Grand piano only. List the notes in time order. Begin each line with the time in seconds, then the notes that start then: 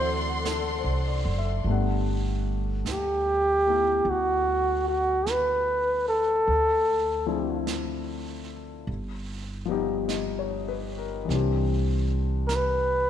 Already playing: E3 A3 C4 D4 F#4
0.47 A4
0.79 C5
1.08 D5
1.38 E5
1.66 G3 A3 B3
1.70 D4 F#5
3.67 A3 B3 E4
7.26 F3 A3 C4 D4 E4
9.65 F3 G3 B3
9.70 D#4 G4
10.08 D#5
10.39 C#5
10.68 B4
10.98 A#4
11.25 E3 G3
11.30 C4 D4
11.35 G4